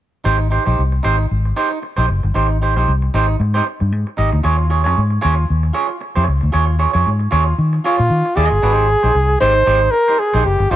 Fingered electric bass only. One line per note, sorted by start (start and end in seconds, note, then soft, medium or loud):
0.25 0.57 G#1 medium
0.67 0.75 A#1 medium
0.79 0.98 C2 medium
1.05 1.25 G#1 medium
1.31 1.51 G#1 medium
1.98 2.06 A#1 medium
2.09 2.20 F#1 medium
2.24 2.33 G1 medium
2.35 2.76 G#1 medium
2.76 2.85 A#1 medium
2.88 3.08 C2 medium
3.14 3.34 G#1 medium
3.40 3.60 G#2 loud
3.81 3.92 G2 medium
3.92 4.03 G#2 loud
4.18 4.29 G#1 medium
4.33 4.42 D2 medium
4.44 4.86 D#2 medium
4.86 4.94 F2 medium
4.98 5.17 G#2 medium
5.24 5.44 D#2 medium
5.50 5.70 D#2 medium
6.17 6.25 F2 medium
6.28 6.39 C#2 medium
6.43 6.51 D2 medium
6.54 6.85 D#2 medium
6.95 7.03 F2 medium
7.07 7.26 G#2 medium
7.32 7.52 D#2 medium
7.58 7.78 D#3 loud
7.99 8.08 A#2 medium
8.10 8.21 D#3 loud
8.37 8.48 D#2 medium
8.51 8.60 G1 medium
8.63 8.94 G#1 medium
9.04 9.12 A#1 medium
9.15 9.35 C2 medium
9.41 9.61 G#1 medium
9.67 9.87 G#1 loud
10.34 10.43 A#1 medium
10.46 10.57 F#1 medium
10.60 10.68 G1 medium
10.71 10.76 G#1 medium